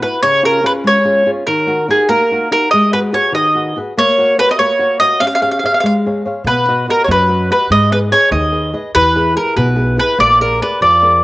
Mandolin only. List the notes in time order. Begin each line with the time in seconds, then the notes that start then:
0.02 B4
0.23 C#5
0.45 A#4
0.66 B4
0.87 C#5
1.47 A#4
1.91 G#4
2.09 A#4
2.52 A#4
2.71 D#5
2.93 B4
3.14 C#5
3.35 D#5
3.98 C#5
4.39 B4
4.51 D#5
4.59 C#5
5.00 D#5
5.20 F5
5.27 F5
5.35 F5
5.42 F5
5.51 F5
5.59 F5
5.66 F5
5.74 F5
5.80 F5
5.86 F5
6.47 B4
6.90 A#4
7.04 C#5
7.11 B4
7.52 B4
7.72 D#5
7.92 B4
8.12 C#5
8.32 D#5
8.95 B4
9.37 A#4
9.57 B4
10.00 B4
10.20 D5
10.41 A#4
10.62 B4
10.82 D5